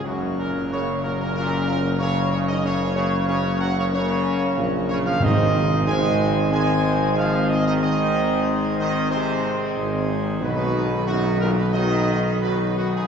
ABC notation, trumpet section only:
X:1
M:4/4
L:1/16
Q:1/4=92
K:Abmix
V:1 name="Trumpet section"
G2 B2 d2 B B B2 B2 d2 d e | d2 d2 d2 g d d6 d f | e4 a4 a4 f2 e e | e6 e2 c4 z4 |
_c4 G2 B c e4 c2 G A |]